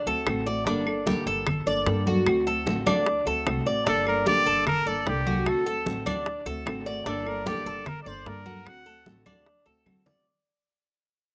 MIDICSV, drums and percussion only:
0, 0, Header, 1, 2, 480
1, 0, Start_track
1, 0, Key_signature, -2, "minor"
1, 0, Tempo, 399734
1, 803, Time_signature, 4, 2, 24, 8
1, 13619, End_track
2, 0, Start_track
2, 0, Title_t, "Drums"
2, 84, Note_on_c, 9, 60, 36
2, 90, Note_on_c, 9, 63, 33
2, 204, Note_off_c, 9, 60, 0
2, 210, Note_off_c, 9, 63, 0
2, 320, Note_on_c, 9, 60, 69
2, 320, Note_on_c, 9, 61, 82
2, 321, Note_on_c, 9, 75, 65
2, 332, Note_on_c, 9, 63, 34
2, 440, Note_off_c, 9, 60, 0
2, 440, Note_off_c, 9, 61, 0
2, 441, Note_off_c, 9, 75, 0
2, 452, Note_off_c, 9, 63, 0
2, 563, Note_on_c, 9, 60, 34
2, 683, Note_off_c, 9, 60, 0
2, 802, Note_on_c, 9, 60, 65
2, 808, Note_on_c, 9, 63, 35
2, 922, Note_off_c, 9, 60, 0
2, 928, Note_off_c, 9, 63, 0
2, 1041, Note_on_c, 9, 75, 65
2, 1045, Note_on_c, 9, 60, 35
2, 1047, Note_on_c, 9, 63, 32
2, 1161, Note_off_c, 9, 75, 0
2, 1165, Note_off_c, 9, 60, 0
2, 1167, Note_off_c, 9, 63, 0
2, 1281, Note_on_c, 9, 60, 59
2, 1286, Note_on_c, 9, 63, 89
2, 1401, Note_off_c, 9, 60, 0
2, 1406, Note_off_c, 9, 63, 0
2, 1522, Note_on_c, 9, 60, 35
2, 1526, Note_on_c, 9, 63, 34
2, 1642, Note_off_c, 9, 60, 0
2, 1647, Note_off_c, 9, 63, 0
2, 1761, Note_on_c, 9, 60, 68
2, 1763, Note_on_c, 9, 75, 60
2, 1768, Note_on_c, 9, 63, 34
2, 1768, Note_on_c, 9, 64, 86
2, 1881, Note_off_c, 9, 60, 0
2, 1884, Note_off_c, 9, 75, 0
2, 1888, Note_off_c, 9, 63, 0
2, 1888, Note_off_c, 9, 64, 0
2, 2008, Note_on_c, 9, 63, 33
2, 2129, Note_off_c, 9, 63, 0
2, 2240, Note_on_c, 9, 60, 67
2, 2240, Note_on_c, 9, 61, 77
2, 2248, Note_on_c, 9, 63, 38
2, 2360, Note_off_c, 9, 60, 0
2, 2360, Note_off_c, 9, 61, 0
2, 2368, Note_off_c, 9, 63, 0
2, 2479, Note_on_c, 9, 60, 34
2, 2485, Note_on_c, 9, 63, 82
2, 2599, Note_off_c, 9, 60, 0
2, 2605, Note_off_c, 9, 63, 0
2, 2720, Note_on_c, 9, 60, 67
2, 2723, Note_on_c, 9, 75, 64
2, 2727, Note_on_c, 9, 63, 35
2, 2840, Note_off_c, 9, 60, 0
2, 2843, Note_off_c, 9, 75, 0
2, 2847, Note_off_c, 9, 63, 0
2, 2967, Note_on_c, 9, 63, 32
2, 3087, Note_off_c, 9, 63, 0
2, 3202, Note_on_c, 9, 60, 54
2, 3207, Note_on_c, 9, 63, 92
2, 3322, Note_off_c, 9, 60, 0
2, 3327, Note_off_c, 9, 63, 0
2, 3443, Note_on_c, 9, 63, 95
2, 3446, Note_on_c, 9, 60, 35
2, 3447, Note_on_c, 9, 75, 68
2, 3563, Note_off_c, 9, 63, 0
2, 3566, Note_off_c, 9, 60, 0
2, 3567, Note_off_c, 9, 75, 0
2, 3680, Note_on_c, 9, 60, 67
2, 3688, Note_on_c, 9, 63, 36
2, 3801, Note_off_c, 9, 60, 0
2, 3808, Note_off_c, 9, 63, 0
2, 3924, Note_on_c, 9, 60, 35
2, 3926, Note_on_c, 9, 63, 34
2, 4044, Note_off_c, 9, 60, 0
2, 4046, Note_off_c, 9, 63, 0
2, 4163, Note_on_c, 9, 60, 69
2, 4163, Note_on_c, 9, 61, 83
2, 4166, Note_on_c, 9, 75, 64
2, 4169, Note_on_c, 9, 63, 34
2, 4283, Note_off_c, 9, 60, 0
2, 4283, Note_off_c, 9, 61, 0
2, 4286, Note_off_c, 9, 75, 0
2, 4289, Note_off_c, 9, 63, 0
2, 4408, Note_on_c, 9, 60, 34
2, 4529, Note_off_c, 9, 60, 0
2, 4645, Note_on_c, 9, 60, 70
2, 4647, Note_on_c, 9, 63, 35
2, 4765, Note_off_c, 9, 60, 0
2, 4767, Note_off_c, 9, 63, 0
2, 4882, Note_on_c, 9, 60, 34
2, 4884, Note_on_c, 9, 75, 62
2, 4888, Note_on_c, 9, 63, 33
2, 5002, Note_off_c, 9, 60, 0
2, 5004, Note_off_c, 9, 75, 0
2, 5009, Note_off_c, 9, 63, 0
2, 5124, Note_on_c, 9, 63, 90
2, 5125, Note_on_c, 9, 60, 56
2, 5244, Note_off_c, 9, 63, 0
2, 5245, Note_off_c, 9, 60, 0
2, 5366, Note_on_c, 9, 60, 34
2, 5368, Note_on_c, 9, 63, 36
2, 5486, Note_off_c, 9, 60, 0
2, 5488, Note_off_c, 9, 63, 0
2, 5605, Note_on_c, 9, 60, 65
2, 5609, Note_on_c, 9, 75, 62
2, 5610, Note_on_c, 9, 63, 35
2, 5610, Note_on_c, 9, 64, 85
2, 5725, Note_off_c, 9, 60, 0
2, 5729, Note_off_c, 9, 75, 0
2, 5730, Note_off_c, 9, 63, 0
2, 5730, Note_off_c, 9, 64, 0
2, 5848, Note_on_c, 9, 63, 34
2, 5968, Note_off_c, 9, 63, 0
2, 6084, Note_on_c, 9, 60, 71
2, 6084, Note_on_c, 9, 61, 81
2, 6084, Note_on_c, 9, 63, 35
2, 6204, Note_off_c, 9, 60, 0
2, 6204, Note_off_c, 9, 61, 0
2, 6205, Note_off_c, 9, 63, 0
2, 6326, Note_on_c, 9, 63, 82
2, 6327, Note_on_c, 9, 60, 34
2, 6446, Note_off_c, 9, 63, 0
2, 6447, Note_off_c, 9, 60, 0
2, 6562, Note_on_c, 9, 60, 67
2, 6563, Note_on_c, 9, 75, 69
2, 6565, Note_on_c, 9, 63, 34
2, 6682, Note_off_c, 9, 60, 0
2, 6683, Note_off_c, 9, 75, 0
2, 6685, Note_off_c, 9, 63, 0
2, 6804, Note_on_c, 9, 63, 36
2, 6924, Note_off_c, 9, 63, 0
2, 7040, Note_on_c, 9, 60, 55
2, 7043, Note_on_c, 9, 63, 93
2, 7160, Note_off_c, 9, 60, 0
2, 7163, Note_off_c, 9, 63, 0
2, 7283, Note_on_c, 9, 75, 65
2, 7286, Note_on_c, 9, 60, 36
2, 7287, Note_on_c, 9, 63, 92
2, 7403, Note_off_c, 9, 75, 0
2, 7406, Note_off_c, 9, 60, 0
2, 7407, Note_off_c, 9, 63, 0
2, 7520, Note_on_c, 9, 60, 68
2, 7526, Note_on_c, 9, 63, 35
2, 7640, Note_off_c, 9, 60, 0
2, 7646, Note_off_c, 9, 63, 0
2, 7763, Note_on_c, 9, 60, 36
2, 7766, Note_on_c, 9, 63, 35
2, 7883, Note_off_c, 9, 60, 0
2, 7886, Note_off_c, 9, 63, 0
2, 8003, Note_on_c, 9, 75, 71
2, 8004, Note_on_c, 9, 63, 34
2, 8007, Note_on_c, 9, 60, 69
2, 8007, Note_on_c, 9, 61, 83
2, 8123, Note_off_c, 9, 75, 0
2, 8124, Note_off_c, 9, 63, 0
2, 8127, Note_off_c, 9, 60, 0
2, 8127, Note_off_c, 9, 61, 0
2, 8242, Note_on_c, 9, 60, 35
2, 8362, Note_off_c, 9, 60, 0
2, 8480, Note_on_c, 9, 60, 69
2, 8486, Note_on_c, 9, 63, 35
2, 8600, Note_off_c, 9, 60, 0
2, 8606, Note_off_c, 9, 63, 0
2, 8723, Note_on_c, 9, 60, 34
2, 8725, Note_on_c, 9, 75, 60
2, 8728, Note_on_c, 9, 63, 33
2, 8843, Note_off_c, 9, 60, 0
2, 8845, Note_off_c, 9, 75, 0
2, 8848, Note_off_c, 9, 63, 0
2, 8960, Note_on_c, 9, 60, 54
2, 8967, Note_on_c, 9, 63, 96
2, 9080, Note_off_c, 9, 60, 0
2, 9087, Note_off_c, 9, 63, 0
2, 9203, Note_on_c, 9, 60, 36
2, 9205, Note_on_c, 9, 63, 36
2, 9323, Note_off_c, 9, 60, 0
2, 9325, Note_off_c, 9, 63, 0
2, 9441, Note_on_c, 9, 60, 65
2, 9441, Note_on_c, 9, 75, 63
2, 9446, Note_on_c, 9, 63, 35
2, 9446, Note_on_c, 9, 64, 86
2, 9561, Note_off_c, 9, 60, 0
2, 9561, Note_off_c, 9, 75, 0
2, 9566, Note_off_c, 9, 63, 0
2, 9566, Note_off_c, 9, 64, 0
2, 9686, Note_on_c, 9, 63, 33
2, 9807, Note_off_c, 9, 63, 0
2, 9924, Note_on_c, 9, 60, 65
2, 9924, Note_on_c, 9, 61, 85
2, 9927, Note_on_c, 9, 63, 34
2, 10044, Note_off_c, 9, 60, 0
2, 10044, Note_off_c, 9, 61, 0
2, 10047, Note_off_c, 9, 63, 0
2, 10165, Note_on_c, 9, 63, 81
2, 10167, Note_on_c, 9, 60, 34
2, 10285, Note_off_c, 9, 63, 0
2, 10287, Note_off_c, 9, 60, 0
2, 10398, Note_on_c, 9, 75, 63
2, 10405, Note_on_c, 9, 63, 35
2, 10406, Note_on_c, 9, 60, 68
2, 10518, Note_off_c, 9, 75, 0
2, 10525, Note_off_c, 9, 63, 0
2, 10526, Note_off_c, 9, 60, 0
2, 10642, Note_on_c, 9, 63, 35
2, 10762, Note_off_c, 9, 63, 0
2, 10882, Note_on_c, 9, 63, 92
2, 10888, Note_on_c, 9, 60, 58
2, 11002, Note_off_c, 9, 63, 0
2, 11008, Note_off_c, 9, 60, 0
2, 11120, Note_on_c, 9, 75, 69
2, 11125, Note_on_c, 9, 63, 95
2, 11127, Note_on_c, 9, 60, 35
2, 11240, Note_off_c, 9, 75, 0
2, 11245, Note_off_c, 9, 63, 0
2, 11247, Note_off_c, 9, 60, 0
2, 11365, Note_on_c, 9, 60, 70
2, 11367, Note_on_c, 9, 63, 37
2, 11485, Note_off_c, 9, 60, 0
2, 11487, Note_off_c, 9, 63, 0
2, 11605, Note_on_c, 9, 63, 35
2, 11611, Note_on_c, 9, 60, 37
2, 11725, Note_off_c, 9, 63, 0
2, 11731, Note_off_c, 9, 60, 0
2, 11841, Note_on_c, 9, 75, 66
2, 11844, Note_on_c, 9, 63, 92
2, 11845, Note_on_c, 9, 60, 80
2, 11961, Note_off_c, 9, 75, 0
2, 11964, Note_off_c, 9, 63, 0
2, 11965, Note_off_c, 9, 60, 0
2, 12082, Note_on_c, 9, 64, 97
2, 12088, Note_on_c, 9, 61, 98
2, 12202, Note_off_c, 9, 64, 0
2, 12208, Note_off_c, 9, 61, 0
2, 13619, End_track
0, 0, End_of_file